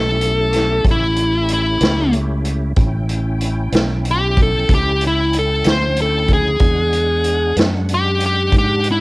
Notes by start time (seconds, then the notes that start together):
Already playing: B1 A3 C#4 E4 G4 A4
0.21 closed hi-hat
0.53 snare, closed hi-hat
0.84 A1, kick, closed hi-hat
0.91 E4
1.16 closed hi-hat
1.49 closed hi-hat
1.53 E4
1.81 C#2, snare, closed hi-hat
2.13 closed hi-hat
2.45 closed hi-hat
2.76 A1 C#4 E4 G5, kick, closed hi-hat
3.09 closed hi-hat
3.41 closed hi-hat
3.72 B1, snare, closed hi-hat
4.05 closed hi-hat
4.11 G4
4.37 kick, closed hi-hat
4.42 A4
4.69 C#2, kick, closed hi-hat
4.74 G4
5.01 closed hi-hat
5.07 E4
5.33 closed hi-hat
5.39 A4
5.64 D2, snare, closed hi-hat
5.70 C5
5.96 closed hi-hat
6.02 A4
6.28 kick, closed hi-hat
6.33 G#4
6.60 E2 G#3 D4 F#5, kick, closed hi-hat
6.93 closed hi-hat
7.24 closed hi-hat
7.56 F#2, snare, closed hi-hat
7.89 closed hi-hat
7.94 G4
8.20 closed hi-hat
8.26 G4
8.52 G#2, kick, closed hi-hat
8.58 G4
8.84 closed hi-hat
8.91 E4